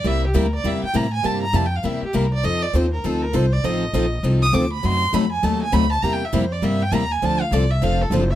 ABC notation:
X:1
M:4/4
L:1/8
Q:"Swing" 1/4=201
K:F
V:1 name="Violin"
e G B d e g b _a | a b (3a g f e G B d | _e d c B A B c d | _e4 z _e' d' =b |
c'2 =b _a =a _a b =a | (3b g e c d e g b _a | a f d e f A c e |]
V:2 name="Steel-string acoustic guitar"
[C,G,B,EG] z [C,G,B,EG] z [C,G,B,EG] z [C,G,B,EG] z | [C,G,B,EG] z [C,G,B,EG] z [C,G,B,EG] z [C,G,B,EG] z | [F,C_EA] z [F,CEA] z [F,CEA] z [F,CEA] z | [F,C_EA] z [F,CEA] z [F,CEA] z [F,CEA] z |
[C,^F,A,^D^F] z [C,F,A,DF] z [C,F,A,DF] z [C,F,A,DF] z | [C,G,B,EG] z [C,G,B,EG] z [C,G,B,EG] z [C,G,B,EG] z | [D,F,CDA] z [D,F,CDA] z [D,F,CDA] z [D,F,CDA] z |]
V:3 name="Steel-string acoustic guitar"
[C,G,B,EG] z [C,G,B,EG] z [C,G,B,EG] z [C,G,B,EG] z | [C,G,B,EG] z [C,G,B,EG] z [C,G,B,EG] z [C,G,B,EG] z | [F,C_EA] z [F,CEA] z [F,CEA] z [F,CEA] z | [F,C_EA] z [F,CEA] z [F,CEA] z [F,CEA] z |
[^F,C^DA] z [F,CDA] z [F,CDA] z [F,CDA] z | [C,G,B,EG] z [C,G,B,EG] z [C,G,B,EG] z [C,G,B,EG] z | [D,F,CDA] z [D,F,CDA] z [D,F,CDA] z [D,F,CDA] z |]
V:4 name="Upright bass" clef=bass
C,,2 D,,2 E,, z A,,2 | G,,2 F,,2 E,, z C,,2 | F,,2 _E,,2 D,,2 C,,2 | A,,,2 B,,,2 C,,2 D,,2 |
^F,,2 =F,,2 ^D,,2 =D,,2 | E,,2 F,,2 G,,2 _E,,2 | D,,2 C,,2 F,,,2 ^F,,,2 |]